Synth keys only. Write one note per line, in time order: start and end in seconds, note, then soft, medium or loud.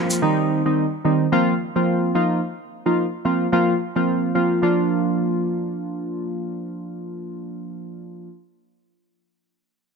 0.00 0.20 F3 medium
0.00 0.20 A#3 medium
0.00 0.20 C4 medium
0.00 0.21 F4 medium
0.22 0.62 D#3 medium
0.22 0.62 G3 medium
0.22 0.62 C4 medium
0.22 0.62 D#4 loud
0.65 0.85 D#3 medium
0.65 0.85 G3 medium
0.65 0.85 C4 medium
0.65 0.85 D#4 medium
1.04 1.26 D#3 medium
1.04 1.26 G3 medium
1.04 1.27 C4 medium
1.04 1.27 D#4 medium
1.32 1.54 F3 medium
1.32 1.54 A#3 medium
1.32 1.54 C4 medium
1.32 1.54 F4 loud
1.76 2.12 F3 medium
1.76 2.12 A#3 medium
1.76 2.12 C4 medium
1.76 2.12 F4 medium
2.15 2.40 F3 medium
2.15 2.41 A#3 medium
2.15 2.41 D#4 medium
2.15 2.41 F4 medium
2.86 3.05 F3 medium
2.86 3.05 A#3 medium
2.86 3.06 D#4 medium
2.86 3.06 F4 medium
3.25 3.47 F3 medium
3.25 3.47 A#3 medium
3.25 3.47 C4 medium
3.25 3.47 F4 medium
3.52 3.74 F3 medium
3.52 3.74 A#3 medium
3.52 3.74 C4 medium
3.52 3.74 F4 loud
3.96 4.32 F3 medium
3.96 4.32 A#3 medium
3.96 4.32 C4 medium
3.96 4.32 F4 medium
4.35 4.61 F3 medium
4.35 4.61 A#3 medium
4.35 4.61 C4 medium
4.35 4.61 F4 medium
4.62 8.28 F3 medium
4.62 8.29 A#3 medium
4.62 8.29 D4 medium
4.62 8.29 F4 medium